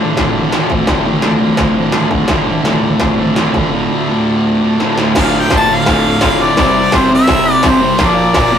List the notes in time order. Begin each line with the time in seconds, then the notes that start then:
Already playing: D2 A2 D3 D4 F4 A4
0.14 D4 F4 A4, kick, snare, floor tom
0.34 A2 D3, floor tom
0.49 D2 A2 D4 F4 A4, snare, floor tom
0.54 D3
0.69 A2 D3, kick, floor tom
0.85 D2 D4 F4 G4, kick, snare, floor tom
0.89 A2 D3
1.05 A2 D3, floor tom
1.21 D2 A2 D4 F4 A4, snare, floor tom
1.26 D3
1.41 floor tom
1.57 D4 F4 C5, kick, snare, floor tom
1.75 A2 D3, floor tom
1.90 D2 D4 F4 A4, snare, floor tom
1.95 A2 D3
2.10 A2 D3, kick, floor tom
2.27 D2 A2 D3 D4 F4 A4, kick, snare, floor tom
2.46 A2 D3, floor tom
2.63 D2 A2 D3 D4 F4 A4, snare, floor tom
2.82 floor tom
2.98 D4 F4 C5, kick, snare, floor tom
3.18 A2 D3, floor tom
3.35 D2 A2 D3 D4 F4 A4, snare, floor tom
3.54 A2 D3, kick, floor tom
3.71 D2 A2 D3 D4 F4 A4
3.90 A2 D3
4.05 D2 D4 F4 A4
4.09 A2 D3
4.43 D4 F4 A4
4.61 A2 D3
4.76 D2 D4 F4 A4
4.80 A2 D3, snare
4.96 A2 D3, snare
5.14 D2 A2 D3 D4 F4 A4, kick, snare, open hi-hat, crash
5.22 F5
5.40 G5
5.50 D2 A2 D3 D4 F4 A4, kick, snare, open hi-hat
5.57 A5
5.67 D2 A2 D3
5.75 F5
5.86 D2 A2 D3 D4 F4 A4, kick, snare, open hi-hat
6.21 D2 A2 D3 D4 F4 A4, kick, snare, open hi-hat
6.38 D2 A2 D3
6.43 D5
6.57 C3 G3 C4 E4 G4 C5, kick, snare, open hi-hat
6.92 C3 G3 C4 E4 G4 C5, kick, snare, open hi-hat
6.96 C5
7.09 C3 G3 C4
7.15 E5
7.27 C3 G3 C4 E4 G4 A4, kick, snare, open hi-hat
7.52 D5
7.60 C3 G3 C4 E4 G4 C5, kick, snare, open hi-hat
7.69 C5
7.81 C3 G3 C4
7.97 A#2 F3 A#3 F4 A#4 D5, kick, snare, open hi-hat
8.04 D5
8.33 A#2 F3 A#3 F4 A#4 D5, kick, snare, open hi-hat
8.39 D5
8.52 A#2 F3 A#3